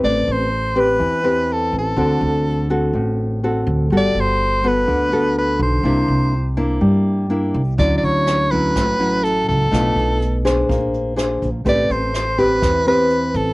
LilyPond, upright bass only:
\new Staff \with { instrumentName = "Upright bass" } { \clef bass \time 4/4 \key a \minor \tempo 4 = 124 a,,8 a,,4. e,4. a,,8 | d,8 d,4. a,,4. d,8 | g,,8 g,,4. d,4. b,,8 | c,8 c,4. g,4. c,8 |
d,8 d,4. a,,4. cis,8 | b,,8 b,,4. bes,,4. bes,,8 | a,,8 a,,4. e,4. a,,8 | }